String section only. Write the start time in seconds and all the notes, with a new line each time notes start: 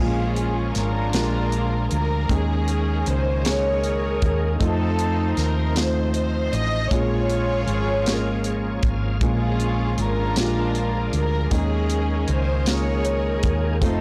0.02 C#4 F4 G#4
0.77 D4 F4 A#4
1.92 A#4
2.31 C#4 G#4
3.07 C5
3.47 G#4 A#4 C#5
4.62 C4 D#4 A4
5.38 A#4
5.76 C5
6.15 C5
6.54 D#5
6.92 F4 G#4 C#5
9.24 C#4 F4 G#4
10.01 D4 F4 A#4
11.17 A#4
11.55 C#4 G#4
12.32 C5
12.70 G#4 A#4 C#5
13.85 C4 D#4 A4